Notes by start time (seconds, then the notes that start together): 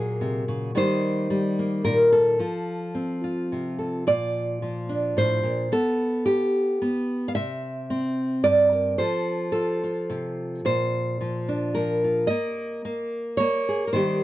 Already playing: A#2 F#3 A#3 G#4
0.21 C3
0.48 C#3
0.75 D#3 G3 A#3 D#4 C5
1.30 G3
1.59 A#3
1.85 A#2 A#4
2.12 A4
2.39 F3 F4
2.95 C4
3.24 F4
3.52 C3
3.79 A4
4.07 A#2 D5
4.62 F3
4.89 D4
5.17 A2 C5
5.43 A#2
5.72 B3 A4
6.26 G4
6.82 B3
7.28 F5
7.35 C3 E5
7.90 C4
8.44 G2 D5
8.72 A#4
8.98 F3 F4 A4 C5
9.52 F4 A4
9.84 F4
10.10 C3
10.65 A#2 C5
11.21 F3
11.49 D4
11.75 F3 A#4
12.04 F4
12.27 A#3 D#5
12.85 A#3
13.37 A#3 C#5
13.69 G#4
13.87 A#4
13.93 D#3 G3 A#3 G4 C5